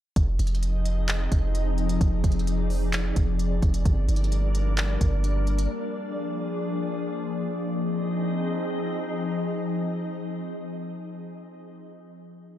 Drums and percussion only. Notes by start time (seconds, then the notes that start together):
0.16 kick, closed hi-hat
0.39 closed hi-hat
0.47 closed hi-hat
0.55 closed hi-hat
0.63 closed hi-hat
0.86 closed hi-hat
1.09 clap, closed hi-hat
1.32 kick, closed hi-hat
1.55 closed hi-hat
1.78 closed hi-hat
1.89 closed hi-hat
2.01 kick, closed hi-hat
2.24 kick, closed hi-hat
2.32 closed hi-hat
2.39 closed hi-hat
2.47 closed hi-hat
2.70 open hi-hat
2.93 clap, closed hi-hat
3.16 kick, closed hi-hat
3.39 closed hi-hat
3.62 kick, closed hi-hat
3.74 closed hi-hat
3.85 kick, closed hi-hat
4.09 closed hi-hat
4.16 closed hi-hat
4.24 closed hi-hat
4.32 closed hi-hat
4.55 closed hi-hat
4.78 clap, closed hi-hat
5.01 kick, closed hi-hat
5.24 closed hi-hat
5.47 closed hi-hat
5.59 closed hi-hat